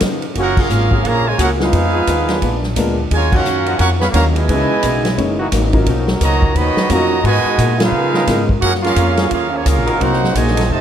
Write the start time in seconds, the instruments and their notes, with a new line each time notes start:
Already playing: upright piano A#4
0.00 steel-string acoustic guitar C#3 F3 B3 D#4, kick, snare, hi-hat pedal, ride
0.22 ride
0.35 upright bass F#1, steel-string acoustic guitar F#3 A#3 F4 G#4, trombone section A#3 C#4 F#4, kick, ride
0.39 trumpet section C#4 G#4 A#4 F#5
0.57 trombone section F#3 A#3 C#4 F4 G#4, trumpet section C#4 G#4 A#4 F5, kick, crash
0.70 upright bass G#1, steel-string acoustic guitar F#3 A#3 F4 G#4, hi-hat pedal
0.90 trombone section F#3 A#3 F4 G#4, kick
1.04 upright bass A#1, trombone section C#3 F3 A#3, steel-string acoustic guitar F#3 A#3 F4 G#4, trumpet section G#4 C#5 F5, kick, ride
1.08 trumpet section A#5
1.26 trombone section C#3 F3 G#3, trumpet section F4 A#4 C#5 G#5
1.37 upright bass C#2, steel-string acoustic guitar F#3 A#3 F4 G#4, trombone section A#3 C#4 F#4, trumpet section C#4 G#4 A#4 F#5, kick, hi-hat pedal, ride
1.59 trombone section G#3 B3 F4, upright piano G#3 B3 D#4 F4 G#4, trumpet section G#4, snare
1.63 trumpet section D#4 B4 F5
1.73 upright bass F2, steel-string acoustic guitar F3 B3 D#4 G#4, kick, ride
1.93 trombone section F3 B3 D#4 G#4
2.07 upright bass D#2, steel-string acoustic guitar F3 B3 D#4 G#4, kick, hi-hat pedal, ride
2.27 trombone section G#3 B3 D4 A#4, snare, ride
2.41 upright bass A#1, steel-string acoustic guitar A#2 G#3 B3 D4, kick, ride
2.63 snare
2.76 upright bass D2, steel-string acoustic guitar A#2 G#3 B3 D4, upright piano G#3 B3 D4 F4 A#4, kick, hi-hat pedal, ride
3.11 upright bass D#2, steel-string acoustic guitar D#3 F#3 C#4 F4, trombone section G#3, trumpet section C#5, kick, ride
3.15 trumpet section F4 A#4 G#5
3.31 trombone section F3 A#3 C#4 D#4 F#4, kick, crash
3.36 trumpet section C#4 A#4 F5 F#5
3.45 upright bass F#2, steel-string acoustic guitar D#3 F#3 C#4 F4, hi-hat pedal
3.66 trombone section F3 C#4 D#4 F#4, ride
3.77 upright bass F2, steel-string acoustic guitar D#3 F#3, trombone section F#3 A#3 C#4, trumpet section A#4 F5 F#5 C#6, kick, ride
3.81 steel-string acoustic guitar C#4 F4
3.98 trombone section B3, trumpet section G#4 C#5 F5 B5, snare
4.11 upright bass D#2, trombone section C#3 F#3 A#3, steel-string acoustic guitar D#3 F#3 C#4, trumpet section F#4 C#5 F5 A#5, kick, hi-hat pedal, ride
4.15 upright piano F#3 C#4 D#4 F4 A#4, steel-string acoustic guitar F4
4.33 trombone section B2 E3 G#3, trumpet section E4 B4 D#5 G#5, ride
4.48 upright bass C#2, steel-string acoustic guitar C#3 E3 B3 D#4, trombone section E3 C#4 E4 B4, upright piano G#3 C#4 D#4 E4 B4, kick, ride
4.83 upright bass B1, steel-string acoustic guitar C#3 E3 B3 D#4, kick, hi-hat pedal, ride
5.05 snare, ride
5.17 upright bass F#1, steel-string acoustic guitar F#2 E3 A#3 D#4, upright piano G#3 C#4 D#4 E4 C#5, kick, ride
5.39 trombone section E3 A#3 D#4 F#4
5.52 upright bass G#1, steel-string acoustic guitar F#2 E3 A#3 D#4, kick, snare, hi-hat pedal, ride
5.73 upright piano F#3 C#4 D#4 F4 A#4, kick, ride
5.86 upright bass B1, steel-string acoustic guitar B2 F3 A#3 D#4, trombone section F#3 C#4 D#4 A#4, kick, ride
6.08 snare
6.20 upright bass C#2, steel-string acoustic guitar B2 F3 A#3 D#4, trombone section D#3 F#3 A#3, trumpet section F#4 C#5 D#5 A#5, kick, hi-hat pedal, ride
6.42 kick
6.55 upright bass D#2, steel-string acoustic guitar B2 F3 A#3 D#4, trombone section D#3 F#3 B3, trumpet section F#4 C#5 D#5 B5, kick, ride
6.76 muted upright bass stroke, snare
6.89 upright bass F2, steel-string acoustic guitar B2 F3 A#3 D#4, trombone section D#3 A#3 F#4, upright piano F#3 C#4 D#4 F4 A#4, trumpet section F#4 C#5 D#5 A#5, kick, hi-hat pedal, ride
7.22 upright bass G#2, trombone section B2 D#3 G#3 B3 F#4 B4, steel-string acoustic guitar G#3 B3 F#4, trumpet section F#4 B4 D#5 G#5, kick, ride
7.27 steel-string acoustic guitar A#4
7.45 muted upright bass stroke
7.58 upright bass A#2, steel-string acoustic guitar G#3 B3 F#4 A#4, kick, hi-hat pedal, ride
7.77 trombone section G#3 B3 F4, snare, ride
7.82 trumpet section D#4 G#4 B4 F5
7.92 upright bass C#3, steel-string acoustic guitar C#3 B3 F4 A#4
8.13 trombone section F3 B3 D#4 A#4, snare
8.27 upright bass G#2, steel-string acoustic guitar C#3 B3 F4 A#4, upright piano G#3 B3 D#4 F4 A#4, kick, snare, hi-hat pedal, ride
8.49 kick
8.60 upright bass F#2, steel-string acoustic guitar F#3 A#3, trombone section A#3 C#4 F#4, trumpet section C#4 G#4 A#4 F#5, kick, ride
8.64 steel-string acoustic guitar F4 G#4
8.75 snare
8.81 trombone section A#3 C#4 F4, ride
8.85 trumpet section C#4 G#4 A#4 F5, snare
8.96 upright bass F2, steel-string acoustic guitar F#3 A#3 F4 G#4, kick, hi-hat pedal, ride
9.17 trombone section F#3 A#3 F4 G#4, snare, ride
9.28 upright bass D#2, steel-string acoustic guitar F#3 A#3, trombone section A#3 C#4 F4, trumpet section G#4 F5, kick, ride
9.33 trumpet section C#4 A#4, steel-string acoustic guitar F4 G#4
9.50 trombone section F3 A#3 C#4
9.54 trumpet section A#3 F4 G#4 C#5
9.63 upright bass C#2, steel-string acoustic guitar F#3 A#3 F4, trombone section A#3 C#4 F4, trumpet section C#4 G#4 A#4 F5, kick, hi-hat pedal, ride
9.67 steel-string acoustic guitar G#4
9.78 upright bass A#1
9.86 upright bass F#1, trombone section F#3 C4 D#4 A#4, ride
9.97 upright bass C2, steel-string acoustic guitar C3 F#3, upright piano F#3, trombone section A#3 D#4 F#4, trumpet section D#4 A#4 F#5, kick, ride
10.02 upright piano A#3 C4 D#4 F#4, steel-string acoustic guitar A#3 D#4, trumpet section C5
10.13 snare
10.24 snare
10.32 upright bass A#1, trombone section A#2 D#3 G#3, steel-string acoustic guitar C3 F#3, trumpet section F#4 C5 D#5 G#5, kick, hi-hat pedal, ride
10.36 steel-string acoustic guitar A#3 D#4
10.47 snare
10.56 trombone section F3 C4 D#4 A4, snare, ride
10.68 upright bass F1, trombone section C3 D#3 A3, steel-string acoustic guitar F3 C4 D#4 A4, trumpet section F4 C5 D#5 A5, kick